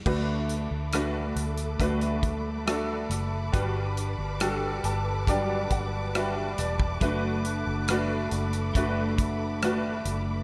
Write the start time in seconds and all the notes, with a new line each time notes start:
0.05 D2 D3 A3 D4 F#4 A4 B4 A5 B5 D6, kick, crash
0.49 closed hi-hat
0.71 D2
0.93 A3 D4 F#4 B4, cross-stick, closed hi-hat
1.36 D2, closed hi-hat
1.58 closed hi-hat
1.80 D2 A3 D4 F#4 B4, kick, closed hi-hat
2.01 closed hi-hat
2.23 kick, closed hi-hat
2.66 A3 D4 F#4 A4, cross-stick, closed hi-hat
3.10 F#1, cross-stick, closed hi-hat
3.52 G1 G2 G3 D4 F#4 B4, kick, closed hi-hat
3.97 closed hi-hat
4.18 G1
4.40 G3 D4 F#4 A4, cross-stick, closed hi-hat
4.84 G1 A5, closed hi-hat
5.27 F#3 G3 D4 D5 G5, kick, closed hi-hat
5.71 G1 F#5, kick, closed hi-hat
6.15 G3 D4 F#4 B4 E5, cross-stick, closed hi-hat
6.58 E1 D5, cross-stick, closed hi-hat
6.80 kick
7.01 F#1 F#3 A3 D4 F#4 A4 B4 B5, kick, closed hi-hat
7.44 D4 F#4 B4, closed hi-hat
7.67 F#1
7.88 A3 D4 F#4 B4, cross-stick, closed hi-hat
8.31 F#1, closed hi-hat
8.53 closed hi-hat
8.74 F#1 A3 D4 F#4 B4, kick, closed hi-hat
8.78 B4
9.18 kick, closed hi-hat
9.63 A3 D4 F#4 B4, cross-stick, closed hi-hat
10.05 F#1, closed hi-hat